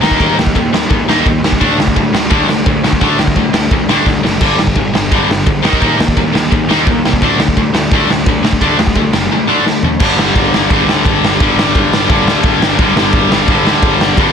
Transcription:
0.01 picked electric bass D#2, distorted electric guitar D#3 A#3 D#4, snare
0.11 kick
0.19 picked electric bass D#2, distorted electric guitar D#3 A#3 D#4, kick, ride
0.36 picked electric bass D#2, distorted electric guitar D#3 A#3, snare
0.47 kick
0.55 picked electric bass D#2, distorted electric guitar D#3 A#3, kick, ride
0.73 picked electric bass D#2, distorted electric guitar D#3 A#3, snare
0.89 picked electric bass D#2, distorted electric guitar D#3 A#3, kick, ride
1.08 picked electric bass D#2, distorted electric guitar D#3 A#3 D#4, snare
1.26 picked electric bass D#2, distorted electric guitar D#3 A#3, kick, ride
1.44 picked electric bass D#2, distorted electric guitar D#3 A#3, snare
1.52 kick
1.60 picked electric bass D2, distorted electric guitar D3 A3 D4, kick, ride
1.78 picked electric bass D2, distorted electric guitar D3 A3, snare
1.88 kick
1.96 picked electric bass D2, distorted electric guitar D3 A3, kick, ride
2.13 picked electric bass D2, distorted electric guitar D3 A3, snare
2.30 picked electric bass D2, distorted electric guitar D3 A3 D4, kick, ride
2.48 picked electric bass D2, distorted electric guitar D3 A3, snare
2.66 picked electric bass D2, distorted electric guitar D3 A3, kick, ride
2.84 picked electric bass D2, distorted electric guitar D3 A3, snare
2.93 kick
3.01 picked electric bass D2, distorted electric guitar D3 A3 D4, kick, ride
3.19 picked electric bass D2, distorted electric guitar D3 A3, snare
3.27 kick
3.36 picked electric bass D2, distorted electric guitar D3 A3, kick, ride
3.53 picked electric bass D2, distorted electric guitar D3 A3, snare
3.71 picked electric bass D2, distorted electric guitar D3 A3, kick, ride
3.89 picked electric bass D2, distorted electric guitar D3 A3 D4, snare
4.06 picked electric bass D2, distorted electric guitar D3 A3, kick, snare
4.23 picked electric bass F#1, distorted electric guitar D3 A3, snare
4.41 picked electric bass G1, distorted electric guitar G2 D3 G3, kick, crash
4.59 picked electric bass G1, distorted electric guitar G2 D3, snare
4.67 kick
4.75 picked electric bass G1, distorted electric guitar G2 D3, kick, ride
4.94 picked electric bass G1, distorted electric guitar G2 D3, snare
5.11 picked electric bass G1, distorted electric guitar G2 D3 G3, kick, ride
5.28 picked electric bass G1, distorted electric guitar G2 D3, snare
5.46 picked electric bass G1, distorted electric guitar G2 D3, kick, ride
5.62 picked electric bass D#2, distorted electric guitar D#3 A#3 D#4, snare
5.73 kick
5.80 picked electric bass D#2, distorted electric guitar D#3 A#3 D#4, kick, ride
5.97 picked electric bass D#2, distorted electric guitar D#3 A#3, snare
6.08 kick
6.17 picked electric bass D#2, distorted electric guitar D#3 A#3, kick, ride
6.33 picked electric bass D#2, distorted electric guitar D#3 A#3, snare
6.51 picked electric bass D#2, distorted electric guitar D#3 A#3, kick, ride
6.69 picked electric bass D#2, distorted electric guitar D#3 A#3 D#4, snare
6.87 picked electric bass D#2, distorted electric guitar D#3 A#3, kick, ride
7.04 picked electric bass C2, distorted electric guitar D#3 A#3, snare
7.13 kick
7.22 picked electric bass D2, distorted electric guitar D3 A3 D4, kick, ride
7.38 picked electric bass D2, distorted electric guitar D3 A3, snare
7.48 kick
7.57 picked electric bass D2, distorted electric guitar D3 A3, kick, ride
7.74 picked electric bass D2, distorted electric guitar D3 A3, snare
7.91 picked electric bass D2, distorted electric guitar D3 A3 D4, kick, ride
8.09 picked electric bass D2, distorted electric guitar D3 A3, snare
8.26 picked electric bass D2, distorted electric guitar D3 A3, kick, ride
8.43 picked electric bass D2, distorted electric guitar D3 A3, snare
8.53 kick
8.61 picked electric bass D2, distorted electric guitar D3 A3 D4, kick, ride
8.78 picked electric bass D2, distorted electric guitar D3 A3, snare
8.87 kick
8.95 picked electric bass D2, distorted electric guitar D3 A3, kick, ride
9.13 picked electric bass F#1, distorted electric guitar D3 A3, snare
9.31 distorted electric guitar D3 A3
9.47 distorted electric guitar D3 A3 D4
9.65 distorted electric guitar D3 A3, snare
9.83 distorted electric guitar D3 A3, floor tom
10.00 picked electric bass G1, distorted electric guitar G2 D3 G3, kick, crash
10.18 picked electric bass G1, snare
10.35 picked electric bass G1, kick, ride
10.52 picked electric bass G1, snare
10.70 picked electric bass G1, distorted electric guitar G2 D3 G3, kick, ride
10.85 picked electric bass D2, snare
11.05 picked electric bass G1, kick, ride
11.22 picked electric bass G1, snare
11.40 picked electric bass G1, distorted electric guitar G2 D3, kick, ride
11.44 distorted electric guitar G3
11.57 picked electric bass G1, snare
11.75 picked electric bass G1, kick, ride
11.92 picked electric bass G1, snare
12.08 picked electric bass G1, distorted electric guitar G2 D3 G3, kick, ride
12.26 picked electric bass D2, snare
12.43 picked electric bass G1, kick, ride
12.61 picked electric bass G1, snare
12.78 picked electric bass G1, distorted electric guitar G2 D3 G3, kick, ride
12.95 picked electric bass G1, snare
13.13 picked electric bass G1, kick, ride
13.31 picked electric bass G1, snare
13.48 picked electric bass G1, distorted electric guitar G2 D3 G3, kick, ride
13.67 picked electric bass D2, snare
13.82 picked electric bass G1, kick, ride
14.00 picked electric bass G1, snare
14.17 picked electric bass G1, distorted electric guitar G2 D3 G3, kick, ride

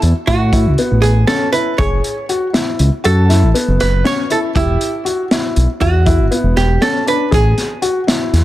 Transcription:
Already playing: grand piano E4
0.02 analog synth bass E2, closed hi-hat
0.27 analog synth bass A2, hollow-body jazz guitar F#4, grand piano F#4, kick, closed hi-hat
0.53 grand piano E4, kick, closed hi-hat
0.66 analog synth bass C#2
0.78 grand piano B3, closed hi-hat
0.92 analog synth bass A1
1.02 analog synth bass A1, hollow-body jazz guitar G#4, closed hi-hat
1.27 grand piano C#4, hollow-body jazz guitar A4, snare, closed hi-hat
1.52 grand piano E4, hollow-body jazz guitar B4, closed hi-hat
1.78 analog synth bass F#1, grand piano G#4, hollow-body jazz guitar C#5, kick, closed hi-hat
2.04 closed hi-hat
2.29 grand piano F#4, closed hi-hat
2.53 grand piano E4, snare, closed hi-hat
2.79 analog synth bass C#2, closed hi-hat
3.04 analog synth bass F#2, grand piano F#4, hollow-body jazz guitar A4, closed hi-hat
3.29 grand piano E4, snare, closed hi-hat
3.43 analog synth bass A1
3.54 grand piano B3, closed hi-hat
3.68 analog synth bass F#1
3.80 analog synth bass F#1, hollow-body jazz guitar B4, snare, closed hi-hat
4.04 grand piano C#4, hollow-body jazz guitar C#5, snare, closed hi-hat
4.30 grand piano E4, hollow-body jazz guitar A4, closed hi-hat
4.55 analog synth bass E1, hollow-body jazz guitar E4, grand piano G4, kick, closed hi-hat
4.81 closed hi-hat
5.05 grand piano F#4, closed hi-hat
5.31 grand piano E4, snare, closed hi-hat
5.56 analog synth bass B1, closed hi-hat
5.81 analog synth bass E2, grand piano F#4, hollow-body jazz guitar F#4, kick, closed hi-hat
6.06 grand piano E4, kick, closed hi-hat
6.19 analog synth bass G1
6.31 grand piano B3, closed hi-hat
6.39 hollow-body jazz guitar E4
6.44 analog synth bass E1
6.57 analog synth bass E1, hollow-body jazz guitar G4, snare, closed hi-hat
6.81 grand piano C#4, hollow-body jazz guitar A4, snare, closed hi-hat
7.07 grand piano D4, hollow-body jazz guitar B4, closed hi-hat
7.31 analog synth bass A1, grand piano G#4, hollow-body jazz guitar G#4, kick, closed hi-hat
7.58 snare, closed hi-hat
7.82 grand piano F#4, closed hi-hat
8.07 grand piano E4, snare, closed hi-hat
8.33 analog synth bass E2, snare, closed hi-hat

